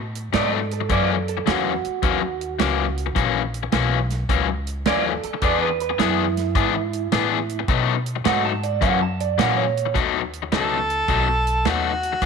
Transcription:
Already playing: upright bass A2
0.15 closed hi-hat
0.33 upright bass G#2, overdriven electric guitar B2 F#3 A3 D#4, clean electric guitar D5, snare, closed hi-hat
0.53 clean electric guitar A4
0.71 clean electric guitar A4, closed hi-hat
0.81 muted overdriven electric guitar stroke
0.89 overdriven electric guitar F#2 E3 A#3 C#4, upright bass F#2, clean electric guitar D5, kick, closed hi-hat
1.12 clean electric guitar A4
1.28 clean electric guitar A4, closed hi-hat
1.37 muted overdriven electric guitar stroke
1.46 upright bass E2, overdriven electric guitar F#2 E3 A#3 C#4, clean electric guitar F#4, snare, closed hi-hat
1.85 muted upright bass stroke, closed hi-hat
2.03 upright bass D#2, overdriven electric guitar F#2 E3 A#3 C#4, kick, closed hi-hat
2.22 muted overdriven electric guitar stroke
2.41 closed hi-hat
2.59 upright bass C#2, overdriven electric guitar F#2 E3 A#3 C#4, snare, closed hi-hat
2.98 closed hi-hat
3.06 muted overdriven electric guitar stroke
3.15 upright bass A#1, overdriven electric guitar F#2 E3 A#3 C#4, kick, closed hi-hat
3.54 closed hi-hat
3.63 muted overdriven electric guitar stroke
3.72 upright bass B1, overdriven electric guitar F#2 E3 A#3 C#4, snare, closed hi-hat
4.10 snare, closed hi-hat
4.29 upright bass C#2, overdriven electric guitar F#2 E3 A#3 C#4, kick, closed hi-hat
4.48 muted overdriven electric guitar stroke
4.67 closed hi-hat
4.85 upright bass D#2, overdriven electric guitar F#2 E3 A#3 C#4, clean electric guitar D5, snare, closed hi-hat
5.06 clean electric guitar A4
5.23 clean electric guitar A4, muted upright bass stroke, closed hi-hat
5.34 muted overdriven electric guitar stroke
5.41 upright bass E2, overdriven electric guitar E3 B3 D4 G#4, clean electric guitar D5, kick, closed hi-hat
5.62 clean electric guitar B4
5.80 clean electric guitar B4, closed hi-hat
5.90 muted overdriven electric guitar stroke
5.99 upright bass F#2, overdriven electric guitar E3 B3 D4 G#4, clean electric guitar E4, snare, closed hi-hat
6.37 snare, closed hi-hat
6.55 upright bass G#2, overdriven electric guitar E3 B3 D4 G#4, kick, closed hi-hat
6.75 muted overdriven electric guitar stroke
6.93 closed hi-hat
7.12 upright bass A2, overdriven electric guitar E3 B3 D4 G#4, snare, closed hi-hat
7.49 closed hi-hat
7.59 muted overdriven electric guitar stroke
7.68 upright bass B2, overdriven electric guitar B2 F#3 A3 D#4, kick, closed hi-hat
8.06 closed hi-hat
8.16 muted overdriven electric guitar stroke
8.25 upright bass G#2, overdriven electric guitar B2 F#3 A3 D#4, clean electric guitar F#5, snare, closed hi-hat
8.45 clean electric guitar A5
8.63 clean electric guitar D5, closed hi-hat
8.81 overdriven electric guitar F#2 E3 A#3 C#4, upright bass F#2, clean electric guitar F#5, kick, closed hi-hat
9.01 clean electric guitar A5, muted overdriven electric guitar stroke
9.20 clean electric guitar D5, closed hi-hat
9.38 overdriven electric guitar F#2 E3 A#3 C#4, upright bass A#2, clean electric guitar F#5, snare, closed hi-hat
9.57 clean electric guitar C#5
9.77 closed hi-hat
9.86 muted overdriven electric guitar stroke
9.94 upright bass D#2, overdriven electric guitar B2 F#3 A3 D#4, kick, snare, closed hi-hat
10.33 closed hi-hat
10.42 muted overdriven electric guitar stroke
10.52 upright bass C#2, overdriven electric guitar B2 F#3 A3 D#4, harmonica A4, snare, closed hi-hat
10.90 closed hi-hat
11.08 upright bass B1, overdriven electric guitar B2 F#3 A3 D#4, kick, closed hi-hat
11.28 muted overdriven electric guitar stroke
11.47 closed hi-hat
11.65 upright bass D#2, overdriven electric guitar B2 F#3 A3 D#4, harmonica F#4, snare, closed hi-hat
12.03 closed hi-hat
12.13 muted overdriven electric guitar stroke
12.22 upright bass E2, overdriven electric guitar E3 B3, kick, snare, closed hi-hat

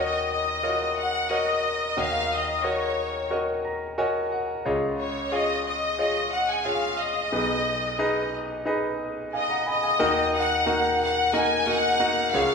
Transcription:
Already playing: grand piano D#2 D#3 F#4 A#4 C#5 D#5, violin section D#5
0.31 violin section D#5
0.63 grand piano F4 A#4 C#5 D#5
0.69 grand piano F#4
0.98 violin section F#5
1.30 grand piano F#4 A#4 C#5 D#5, violin section D#5
1.97 grand piano D#2 D#3 F#4 A#4 C#5 D#5, violin section F5
2.33 violin section D#5
2.64 grand piano F#4 A#4 C#5 D#5, violin section C#5
3.31 grand piano F#4 A#4 C#5 D#5
3.65 grand piano A#5
3.98 grand piano F#4 A#4 C#5 D#5 G#5
4.32 grand piano F#5
4.65 grand piano C#2 C#3 F4 G#4 C#5 D#5
5.00 violin section C#5
5.32 grand piano F4 G#4 C#5 F5, violin section D#5
5.66 violin section D#5
5.99 grand piano F4 G#4 C#5 D#5
6.32 violin section F#5
6.49 violin section G#5
6.65 grand piano F4 G#4 C#5 F5, violin section F5
7.00 violin section D#5
7.32 grand piano B1 B2 D#4 G#4 B4 D#5
7.99 grand piano D#4 G#4 B4 D#5
8.65 grand piano D#4 G#4 B4 D#5
9.33 violin section D#5, grand piano F5 G#5
9.50 grand piano F#5 A#5
9.66 violin section D#5, grand piano G#5 B5
9.83 grand piano F5 G#5
9.99 grand piano D#2 D#3 A#3 D#4 F#4 A#4 D#5
10.35 violin section F#5
10.66 grand piano A#3 D#4 F#4 A#4 D#5
11.01 violin section F#5
11.33 grand piano A#3 D#4 F#4 A#4 D#5, violin section G#5
11.66 grand piano A#3 D#4 F#4 A#4 D#5, violin section F#5
11.99 grand piano A#3 D#4 F#4 A#4 D#5
12.33 grand piano C#2 C#3 G#3 C#4 F4 G#4 C#5, violin section F5

